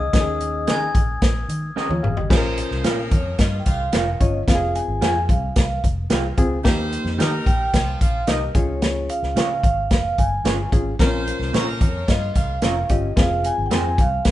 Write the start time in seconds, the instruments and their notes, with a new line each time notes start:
Already playing: vibraphone D#5, glockenspiel D#6
0.00 fingered electric bass C#2
0.13 fingered electric bass D#2, reed electric piano C#4 D#4 G4, vibraphone D#5, glockenspiel D#6, kick, snare, closed hi-hat
0.21 reed electric piano G#4
0.41 closed hi-hat
0.67 fingered electric bass D#3, clean electric guitar C#4 G#4 A#4 D#5, vibraphone G#5, glockenspiel G#6, snare, closed hi-hat
0.95 fingered electric bass A#1, kick, closed hi-hat
1.22 fingered electric bass A#1, kick, snare, closed hi-hat
1.49 fingered electric bass D#3, closed hi-hat
1.76 clean electric guitar C#4 G#4 A#4 D#5, snare
1.89 fingered electric bass D#2, reed electric piano F4 C#5, high tom
2.03 fingered electric bass G1, reed electric piano G#4 F5, mid tom
2.17 fingered electric bass G#1, reed electric piano G4 D#5, floor tom
2.30 fingered electric bass A#1, saxophone section F3 C#4 C5, reed electric piano C#4 F4 G#4, kick, snare, crash
2.37 reed electric piano A#4
2.58 closed hi-hat
2.71 fingered electric bass C2, snare
2.84 fingered electric bass A#2, saxophone section F3 C#4 A#4, clean electric guitar F4 A#4 C#5 F5, snare, closed hi-hat
3.11 fingered electric bass F2, vibraphone C#5, kick, closed hi-hat
3.38 fingered electric bass G2, saxophone section C#3 A#3 F4, vibraphone D#5, kick, snare, closed hi-hat
3.60 vibraphone G5
3.65 fingered electric bass C2, saxophone section C#3 A#3 F4, vibraphone F5, kick, closed hi-hat
3.93 fingered electric bass F1, clean electric guitar F4 A#4 C#5 F5, snare, closed hi-hat
4.20 fingered electric bass G1, reed electric piano C#4 F4 C#5, vibraphone D#5, kick, closed hi-hat
4.47 fingered electric bass F1, reed electric piano C4 F4 G4, vibraphone F5, kick, snare, closed hi-hat
4.55 reed electric piano G#4
4.75 vibraphone G#5, closed hi-hat
4.88 fingered electric bass G#1
5.01 fingered electric bass F2, clean electric guitar F4 G#4 C5 F5, vibraphone G#5, snare, closed hi-hat
5.29 fingered electric bass C2, vibraphone F5, kick, closed hi-hat
5.56 fingered electric bass C2, kick, snare, closed hi-hat
5.84 fingered electric bass F1, kick, closed hi-hat
6.10 fingered electric bass C2, clean electric guitar F4 G#4 C5 F5, snare, closed hi-hat
6.37 fingered electric bass C#2, reed electric piano C4 F4 G#4, kick, closed hi-hat
6.64 fingered electric bass D#2, saxophone section G3 D#4 C5, reed electric piano A#3 D#4 G4, kick, snare, closed hi-hat
6.92 closed hi-hat
7.05 fingered electric bass F2, snare
7.18 fingered electric bass D#3, saxophone section G3 D#4 A#4, clean electric guitar D#4 G4 A#4 D#5, snare, closed hi-hat
7.46 fingered electric bass A#1, vibraphone G5, kick, closed hi-hat
7.73 fingered electric bass C2, saxophone section F3 C#4 F4, kick, snare, closed hi-hat
8.01 fingered electric bass A#1, saxophone section F3 C#4 F4, vibraphone F5, kick, closed hi-hat
8.27 fingered electric bass C2, clean electric guitar D#4 G4 A#4 D#5, vibraphone D#5, snare, closed hi-hat
8.55 fingered electric bass C#2, reed electric piano C#4 F4 G#4, vibraphone C#5, kick, closed hi-hat
8.82 snare, closed hi-hat
9.09 vibraphone F5, closed hi-hat
9.23 fingered electric bass C#2, snare
9.35 fingered electric bass C#3, clean electric guitar C#4 F4 G#4 C#5, snare, closed hi-hat
9.63 fingered electric bass G#1, vibraphone F5, kick, closed hi-hat
9.91 fingered electric bass F1, kick, snare, closed hi-hat
10.18 fingered electric bass G1, vibraphone G#5, kick, closed hi-hat
10.44 fingered electric bass G1, clean electric guitar C#4 F4 G#4 C#5, snare, closed hi-hat
10.72 fingered electric bass G#1, reed electric piano C#4 F4 G#4, kick, closed hi-hat
10.99 fingered electric bass A#1, saxophone section F3 C#4 C5, reed electric piano C4 F4 A#4, kick, snare, closed hi-hat
11.07 reed electric piano C#4
11.27 closed hi-hat
11.39 fingered electric bass C2, snare
11.53 fingered electric bass A#2, saxophone section F3 C#4 A#4, clean electric guitar C#4 F4 A#4 C#5, snare, closed hi-hat
11.81 fingered electric bass F2, vibraphone C#5, kick, closed hi-hat
12.07 fingered electric bass G2, saxophone section C#3 A#3 F4, vibraphone D#5, kick, snare, closed hi-hat
12.34 fingered electric bass C2, saxophone section C#3 A#3 F4, vibraphone F5, kick, closed hi-hat
12.62 fingered electric bass F1, clean electric guitar C#4 F4 A#4 C#5, snare, closed hi-hat
12.89 fingered electric bass G1, reed electric piano C#4 F4 G4, vibraphone D#5, kick, closed hi-hat
13.16 fingered electric bass F1, reed electric piano C4 F4 G#4, vibraphone F5, kick, snare, closed hi-hat
13.44 vibraphone G#5, closed hi-hat
13.58 fingered electric bass G#1
13.66 vibraphone G5
13.71 fingered electric bass F2, clean electric guitar C4 F4 G#4 C5, vibraphone G#5, snare, closed hi-hat
13.98 fingered electric bass C2, vibraphone F5, kick, closed hi-hat
14.25 fingered electric bass C2, kick, snare, closed hi-hat